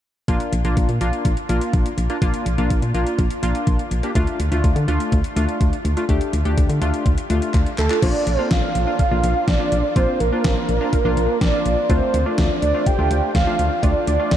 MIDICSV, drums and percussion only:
0, 0, Header, 1, 2, 480
1, 0, Start_track
1, 0, Key_signature, -2, "major"
1, 0, Tempo, 483871
1, 281, Time_signature, 4, 2, 24, 8
1, 14254, End_track
2, 0, Start_track
2, 0, Title_t, "Drums"
2, 280, Note_on_c, 9, 36, 103
2, 281, Note_on_c, 9, 42, 76
2, 380, Note_off_c, 9, 36, 0
2, 380, Note_off_c, 9, 42, 0
2, 398, Note_on_c, 9, 42, 47
2, 497, Note_off_c, 9, 42, 0
2, 522, Note_on_c, 9, 42, 73
2, 621, Note_off_c, 9, 42, 0
2, 641, Note_on_c, 9, 42, 53
2, 740, Note_off_c, 9, 42, 0
2, 762, Note_on_c, 9, 42, 76
2, 763, Note_on_c, 9, 36, 104
2, 862, Note_off_c, 9, 36, 0
2, 862, Note_off_c, 9, 42, 0
2, 880, Note_on_c, 9, 42, 52
2, 980, Note_off_c, 9, 42, 0
2, 1001, Note_on_c, 9, 42, 67
2, 1100, Note_off_c, 9, 42, 0
2, 1121, Note_on_c, 9, 42, 48
2, 1220, Note_off_c, 9, 42, 0
2, 1240, Note_on_c, 9, 42, 76
2, 1241, Note_on_c, 9, 36, 97
2, 1339, Note_off_c, 9, 42, 0
2, 1340, Note_off_c, 9, 36, 0
2, 1359, Note_on_c, 9, 42, 56
2, 1458, Note_off_c, 9, 42, 0
2, 1481, Note_on_c, 9, 42, 74
2, 1580, Note_off_c, 9, 42, 0
2, 1601, Note_on_c, 9, 42, 51
2, 1700, Note_off_c, 9, 42, 0
2, 1720, Note_on_c, 9, 42, 65
2, 1721, Note_on_c, 9, 36, 101
2, 1819, Note_off_c, 9, 42, 0
2, 1821, Note_off_c, 9, 36, 0
2, 1843, Note_on_c, 9, 42, 56
2, 1942, Note_off_c, 9, 42, 0
2, 1962, Note_on_c, 9, 42, 63
2, 2061, Note_off_c, 9, 42, 0
2, 2081, Note_on_c, 9, 42, 52
2, 2180, Note_off_c, 9, 42, 0
2, 2200, Note_on_c, 9, 36, 105
2, 2200, Note_on_c, 9, 42, 74
2, 2299, Note_off_c, 9, 36, 0
2, 2299, Note_off_c, 9, 42, 0
2, 2318, Note_on_c, 9, 42, 49
2, 2417, Note_off_c, 9, 42, 0
2, 2441, Note_on_c, 9, 42, 74
2, 2540, Note_off_c, 9, 42, 0
2, 2561, Note_on_c, 9, 42, 52
2, 2660, Note_off_c, 9, 42, 0
2, 2682, Note_on_c, 9, 42, 76
2, 2683, Note_on_c, 9, 36, 104
2, 2782, Note_off_c, 9, 36, 0
2, 2782, Note_off_c, 9, 42, 0
2, 2801, Note_on_c, 9, 42, 52
2, 2900, Note_off_c, 9, 42, 0
2, 2922, Note_on_c, 9, 42, 65
2, 3021, Note_off_c, 9, 42, 0
2, 3041, Note_on_c, 9, 42, 50
2, 3140, Note_off_c, 9, 42, 0
2, 3160, Note_on_c, 9, 42, 73
2, 3161, Note_on_c, 9, 36, 99
2, 3259, Note_off_c, 9, 42, 0
2, 3260, Note_off_c, 9, 36, 0
2, 3279, Note_on_c, 9, 42, 57
2, 3378, Note_off_c, 9, 42, 0
2, 3401, Note_on_c, 9, 42, 74
2, 3500, Note_off_c, 9, 42, 0
2, 3521, Note_on_c, 9, 42, 49
2, 3620, Note_off_c, 9, 42, 0
2, 3640, Note_on_c, 9, 42, 67
2, 3641, Note_on_c, 9, 36, 105
2, 3739, Note_off_c, 9, 42, 0
2, 3740, Note_off_c, 9, 36, 0
2, 3762, Note_on_c, 9, 42, 56
2, 3862, Note_off_c, 9, 42, 0
2, 3881, Note_on_c, 9, 42, 60
2, 3980, Note_off_c, 9, 42, 0
2, 4000, Note_on_c, 9, 42, 50
2, 4099, Note_off_c, 9, 42, 0
2, 4120, Note_on_c, 9, 36, 105
2, 4120, Note_on_c, 9, 42, 77
2, 4219, Note_off_c, 9, 36, 0
2, 4220, Note_off_c, 9, 42, 0
2, 4238, Note_on_c, 9, 42, 48
2, 4338, Note_off_c, 9, 42, 0
2, 4361, Note_on_c, 9, 42, 78
2, 4460, Note_off_c, 9, 42, 0
2, 4481, Note_on_c, 9, 42, 53
2, 4580, Note_off_c, 9, 42, 0
2, 4603, Note_on_c, 9, 36, 105
2, 4603, Note_on_c, 9, 42, 78
2, 4702, Note_off_c, 9, 36, 0
2, 4702, Note_off_c, 9, 42, 0
2, 4722, Note_on_c, 9, 42, 51
2, 4821, Note_off_c, 9, 42, 0
2, 4842, Note_on_c, 9, 42, 67
2, 4941, Note_off_c, 9, 42, 0
2, 4962, Note_on_c, 9, 42, 50
2, 5062, Note_off_c, 9, 42, 0
2, 5082, Note_on_c, 9, 36, 101
2, 5082, Note_on_c, 9, 42, 74
2, 5181, Note_off_c, 9, 36, 0
2, 5181, Note_off_c, 9, 42, 0
2, 5200, Note_on_c, 9, 42, 53
2, 5299, Note_off_c, 9, 42, 0
2, 5322, Note_on_c, 9, 42, 75
2, 5422, Note_off_c, 9, 42, 0
2, 5442, Note_on_c, 9, 42, 49
2, 5542, Note_off_c, 9, 42, 0
2, 5562, Note_on_c, 9, 36, 108
2, 5562, Note_on_c, 9, 42, 68
2, 5661, Note_off_c, 9, 36, 0
2, 5661, Note_off_c, 9, 42, 0
2, 5684, Note_on_c, 9, 42, 55
2, 5783, Note_off_c, 9, 42, 0
2, 5803, Note_on_c, 9, 42, 64
2, 5902, Note_off_c, 9, 42, 0
2, 5922, Note_on_c, 9, 42, 52
2, 6021, Note_off_c, 9, 42, 0
2, 6041, Note_on_c, 9, 36, 102
2, 6041, Note_on_c, 9, 42, 79
2, 6140, Note_off_c, 9, 36, 0
2, 6141, Note_off_c, 9, 42, 0
2, 6160, Note_on_c, 9, 42, 50
2, 6259, Note_off_c, 9, 42, 0
2, 6283, Note_on_c, 9, 42, 75
2, 6382, Note_off_c, 9, 42, 0
2, 6402, Note_on_c, 9, 42, 53
2, 6501, Note_off_c, 9, 42, 0
2, 6523, Note_on_c, 9, 36, 109
2, 6524, Note_on_c, 9, 42, 76
2, 6623, Note_off_c, 9, 36, 0
2, 6623, Note_off_c, 9, 42, 0
2, 6642, Note_on_c, 9, 42, 52
2, 6741, Note_off_c, 9, 42, 0
2, 6762, Note_on_c, 9, 42, 68
2, 6861, Note_off_c, 9, 42, 0
2, 6882, Note_on_c, 9, 42, 49
2, 6981, Note_off_c, 9, 42, 0
2, 7001, Note_on_c, 9, 36, 100
2, 7001, Note_on_c, 9, 42, 76
2, 7100, Note_off_c, 9, 42, 0
2, 7101, Note_off_c, 9, 36, 0
2, 7119, Note_on_c, 9, 42, 56
2, 7218, Note_off_c, 9, 42, 0
2, 7241, Note_on_c, 9, 42, 75
2, 7340, Note_off_c, 9, 42, 0
2, 7362, Note_on_c, 9, 42, 50
2, 7461, Note_off_c, 9, 42, 0
2, 7481, Note_on_c, 9, 39, 50
2, 7481, Note_on_c, 9, 42, 68
2, 7482, Note_on_c, 9, 36, 105
2, 7580, Note_off_c, 9, 39, 0
2, 7581, Note_off_c, 9, 36, 0
2, 7581, Note_off_c, 9, 42, 0
2, 7603, Note_on_c, 9, 42, 55
2, 7702, Note_off_c, 9, 42, 0
2, 7721, Note_on_c, 9, 39, 78
2, 7723, Note_on_c, 9, 42, 63
2, 7821, Note_off_c, 9, 39, 0
2, 7822, Note_off_c, 9, 42, 0
2, 7841, Note_on_c, 9, 39, 76
2, 7841, Note_on_c, 9, 42, 52
2, 7940, Note_off_c, 9, 39, 0
2, 7940, Note_off_c, 9, 42, 0
2, 7961, Note_on_c, 9, 36, 106
2, 7961, Note_on_c, 9, 42, 79
2, 7961, Note_on_c, 9, 49, 84
2, 8060, Note_off_c, 9, 36, 0
2, 8060, Note_off_c, 9, 42, 0
2, 8060, Note_off_c, 9, 49, 0
2, 8202, Note_on_c, 9, 42, 76
2, 8301, Note_off_c, 9, 42, 0
2, 8440, Note_on_c, 9, 38, 106
2, 8443, Note_on_c, 9, 36, 108
2, 8443, Note_on_c, 9, 42, 75
2, 8539, Note_off_c, 9, 38, 0
2, 8542, Note_off_c, 9, 36, 0
2, 8542, Note_off_c, 9, 42, 0
2, 8682, Note_on_c, 9, 42, 67
2, 8781, Note_off_c, 9, 42, 0
2, 8921, Note_on_c, 9, 36, 101
2, 8921, Note_on_c, 9, 42, 73
2, 9020, Note_off_c, 9, 36, 0
2, 9020, Note_off_c, 9, 42, 0
2, 9162, Note_on_c, 9, 42, 74
2, 9261, Note_off_c, 9, 42, 0
2, 9401, Note_on_c, 9, 42, 68
2, 9402, Note_on_c, 9, 36, 105
2, 9402, Note_on_c, 9, 38, 104
2, 9500, Note_off_c, 9, 42, 0
2, 9501, Note_off_c, 9, 36, 0
2, 9501, Note_off_c, 9, 38, 0
2, 9642, Note_on_c, 9, 42, 63
2, 9741, Note_off_c, 9, 42, 0
2, 9880, Note_on_c, 9, 36, 107
2, 9880, Note_on_c, 9, 42, 76
2, 9979, Note_off_c, 9, 36, 0
2, 9980, Note_off_c, 9, 42, 0
2, 10122, Note_on_c, 9, 42, 80
2, 10221, Note_off_c, 9, 42, 0
2, 10361, Note_on_c, 9, 38, 108
2, 10363, Note_on_c, 9, 36, 109
2, 10364, Note_on_c, 9, 42, 76
2, 10460, Note_off_c, 9, 38, 0
2, 10462, Note_off_c, 9, 36, 0
2, 10463, Note_off_c, 9, 42, 0
2, 10602, Note_on_c, 9, 42, 65
2, 10701, Note_off_c, 9, 42, 0
2, 10841, Note_on_c, 9, 36, 102
2, 10841, Note_on_c, 9, 42, 76
2, 10940, Note_off_c, 9, 36, 0
2, 10940, Note_off_c, 9, 42, 0
2, 11082, Note_on_c, 9, 42, 77
2, 11181, Note_off_c, 9, 42, 0
2, 11321, Note_on_c, 9, 36, 108
2, 11321, Note_on_c, 9, 42, 70
2, 11322, Note_on_c, 9, 38, 106
2, 11420, Note_off_c, 9, 42, 0
2, 11421, Note_off_c, 9, 36, 0
2, 11421, Note_off_c, 9, 38, 0
2, 11562, Note_on_c, 9, 42, 63
2, 11661, Note_off_c, 9, 42, 0
2, 11801, Note_on_c, 9, 36, 107
2, 11801, Note_on_c, 9, 42, 81
2, 11900, Note_off_c, 9, 36, 0
2, 11900, Note_off_c, 9, 42, 0
2, 12042, Note_on_c, 9, 42, 80
2, 12141, Note_off_c, 9, 42, 0
2, 12280, Note_on_c, 9, 38, 107
2, 12283, Note_on_c, 9, 36, 108
2, 12283, Note_on_c, 9, 42, 76
2, 12380, Note_off_c, 9, 38, 0
2, 12382, Note_off_c, 9, 36, 0
2, 12383, Note_off_c, 9, 42, 0
2, 12522, Note_on_c, 9, 42, 68
2, 12621, Note_off_c, 9, 42, 0
2, 12761, Note_on_c, 9, 36, 102
2, 12761, Note_on_c, 9, 42, 78
2, 12860, Note_off_c, 9, 42, 0
2, 12861, Note_off_c, 9, 36, 0
2, 13002, Note_on_c, 9, 42, 76
2, 13101, Note_off_c, 9, 42, 0
2, 13241, Note_on_c, 9, 42, 69
2, 13242, Note_on_c, 9, 36, 111
2, 13242, Note_on_c, 9, 38, 110
2, 13341, Note_off_c, 9, 36, 0
2, 13341, Note_off_c, 9, 38, 0
2, 13341, Note_off_c, 9, 42, 0
2, 13482, Note_on_c, 9, 42, 61
2, 13581, Note_off_c, 9, 42, 0
2, 13720, Note_on_c, 9, 36, 111
2, 13721, Note_on_c, 9, 42, 79
2, 13819, Note_off_c, 9, 36, 0
2, 13820, Note_off_c, 9, 42, 0
2, 13962, Note_on_c, 9, 42, 76
2, 14061, Note_off_c, 9, 42, 0
2, 14200, Note_on_c, 9, 38, 109
2, 14203, Note_on_c, 9, 36, 106
2, 14203, Note_on_c, 9, 42, 77
2, 14254, Note_off_c, 9, 36, 0
2, 14254, Note_off_c, 9, 38, 0
2, 14254, Note_off_c, 9, 42, 0
2, 14254, End_track
0, 0, End_of_file